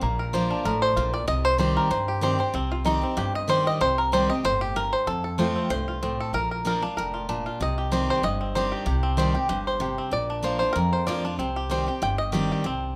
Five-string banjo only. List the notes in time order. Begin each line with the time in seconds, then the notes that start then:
Already playing: F5
0.03 A#3
0.19 A#4
0.34 C5
0.51 D4
0.65 A#4
0.82 C5
0.97 F4
1.14 D5
1.28 D#5
1.45 C5
1.59 C5
1.77 A#4
1.91 C5
2.08 G4
2.23 C5
2.40 C5
2.55 C4
2.72 F4
2.86 D#4
3.03 C4
3.18 G4
3.35 D#5
3.50 C5
3.67 D#5
3.81 C5
3.98 A#4
4.13 C5
4.30 D#5
4.45 C5
4.61 G4
4.76 A#4
4.93 C5
5.07 A4
5.24 A4
5.39 C5
5.56 C4
5.70 C5
5.88 F4
6.03 C4
6.21 A4
6.34 A#4
6.51 A#4
6.67 A#4
6.83 D4
6.97 A#4
7.14 F4
7.29 D4
7.46 F4
7.62 D#5
7.78 G4
7.92 C5
8.10 C5
8.24 D#5
8.41 C4
8.55 C5
8.72 G4
8.86 G4
9.03 C4
9.18 C5
9.35 G4
9.49 G4
9.67 C5
9.81 G4
9.98 C4
10.13 D5
10.30 D4
10.44 C5
10.59 C5
10.73 A#4
10.93 C5
11.07 D5
11.25 D4
11.39 C4
11.56 G4
11.71 C5
11.88 G4
12.03 G5
12.18 D#5
12.33 G4
12.52 G4
12.66 C4